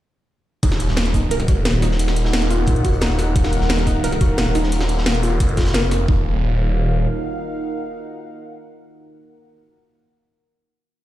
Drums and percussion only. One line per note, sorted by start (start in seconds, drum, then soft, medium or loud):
0.63 kick loud
0.63 closed hi-hat medium
0.71 snare medium
0.71 snare soft
0.80 closed hi-hat medium
0.88 snare soft
0.97 snare loud
0.97 closed hi-hat medium
0.97 closed hi-hat loud
1.05 snare medium
1.05 closed hi-hat soft
1.14 kick medium
1.14 closed hi-hat medium
1.14 open hi-hat medium
1.31 closed hi-hat medium
1.31 closed hi-hat loud
1.40 snare soft
1.40 closed hi-hat soft
1.48 kick loud
1.48 closed hi-hat medium
1.65 snare loud
1.65 closed hi-hat loud
1.65 closed hi-hat medium
1.73 snare soft
1.82 snare soft
1.82 closed hi-hat medium
1.82 open hi-hat medium
1.91 snare soft
1.99 closed hi-hat medium
2.08 snare medium
2.08 snare soft
2.16 closed hi-hat medium
2.25 snare medium
2.33 snare loud
2.33 closed hi-hat loud
2.42 snare medium
2.42 closed hi-hat soft
2.50 closed hi-hat medium
2.50 open hi-hat medium
2.67 kick loud
2.67 closed hi-hat medium
2.76 closed hi-hat soft
2.85 kick medium
2.85 closed hi-hat medium
2.93 closed hi-hat soft
3.01 snare loud
3.01 closed hi-hat medium
3.10 snare soft
3.19 snare soft
3.19 closed hi-hat medium
3.19 open hi-hat medium
3.36 kick loud
3.36 closed hi-hat medium
3.44 snare medium
3.44 snare soft
3.52 closed hi-hat medium
3.61 snare soft
3.69 snare loud
3.69 closed hi-hat medium
3.78 snare medium
3.78 closed hi-hat soft
3.87 kick medium
3.87 closed hi-hat medium
3.87 open hi-hat medium
4.04 closed hi-hat medium
4.12 snare soft
4.12 closed hi-hat soft
4.21 kick loud
4.21 closed hi-hat medium
4.38 snare loud
4.38 closed hi-hat medium
4.46 snare soft
4.55 snare soft
4.55 closed hi-hat medium
4.55 open hi-hat medium
4.63 snare soft
4.72 closed hi-hat medium
4.80 snare medium
4.80 snare soft
4.89 closed hi-hat medium
4.98 snare medium
5.06 snare loud
5.06 closed hi-hat medium
5.14 snare soft
5.14 closed hi-hat soft
5.23 closed hi-hat medium
5.23 open hi-hat medium
5.40 kick loud
5.40 closed hi-hat medium
5.49 closed hi-hat soft
5.57 kick medium
5.57 snare loud
5.57 closed hi-hat medium
5.65 snare loud
5.65 closed hi-hat medium
5.74 snare loud
5.74 closed hi-hat medium
5.82 snare soft
5.91 snare soft
5.91 closed hi-hat medium
5.91 open hi-hat medium
6.08 kick loud